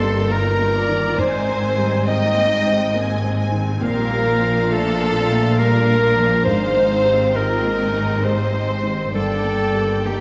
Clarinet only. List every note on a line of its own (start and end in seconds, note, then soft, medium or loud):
0.00 0.33 A4 medium
0.31 1.21 A#4 loud
1.19 2.06 C5 loud
2.07 3.37 D#5 medium
3.83 4.73 A#4 loud
4.71 5.60 A4 medium
5.58 6.45 A#4 loud
6.45 7.37 C5 loud
7.36 8.26 A#4 medium
8.25 9.14 C5 loud
9.15 10.08 A4 loud
10.06 10.21 G4 medium